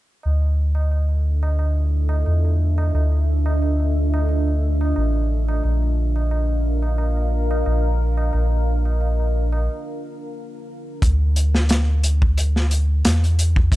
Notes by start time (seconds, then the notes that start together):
0.23 D2 D4 F4 A4 E5, tabla na
0.42 tabla na
0.75 tabla na
0.91 tabla na
1.09 tabla na
1.43 tabla na
1.59 tabla na
1.77 tabla na
2.09 tabla na
2.26 E2, tabla na
2.45 tabla na
2.78 tabla na
2.94 D2, tabla na
3.12 tabla na
3.46 tabla na
3.62 tabla na
3.80 tabla na
4.14 tabla na
4.29 tabla na
4.48 tabla na
4.81 tabla na
4.96 A1, tabla na
5.16 tabla na
5.48 tabla na
5.63 A#1 A#4 F5, tabla na
5.82 tabla na
6.16 tabla na
6.31 tabla na
6.49 tabla na
6.82 tabla na
6.98 tabla na
7.17 tabla na
7.51 tabla na
7.66 A#1, tabla na
7.85 tabla na
8.17 tabla na
8.33 A#1, tabla na
8.50 tabla na
8.85 tabla na
9.01 tabla na
9.20 tabla na
9.52 tabla na
11.02 D2, kick, closed hi-hat
11.36 closed hi-hat
11.55 snare
11.69 snare, closed hi-hat
12.03 closed hi-hat
12.22 kick
12.38 closed hi-hat
12.56 snare
12.71 closed hi-hat
13.05 E2, snare, closed hi-hat
13.24 closed hi-hat
13.39 closed hi-hat
13.56 kick
13.72 D2, kick, closed hi-hat